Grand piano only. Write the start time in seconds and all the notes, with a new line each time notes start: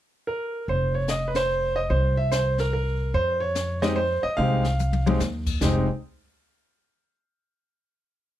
0.27 A#4
0.69 C5
0.95 C#5
1.09 D#5
1.28 B4
1.36 C5
1.76 D#5
1.90 C5
2.17 E5
2.32 C5
2.60 A#4
2.73 A#4
3.14 C5
3.40 C#5
3.82 G#3 C4 D#4 G4 D#5
3.96 C5
4.23 D#5
4.37 G#3 C4 D#4 G4 F5
5.06 G#3 C4 D#4 G4
5.62 G#3 C4 D#4 G4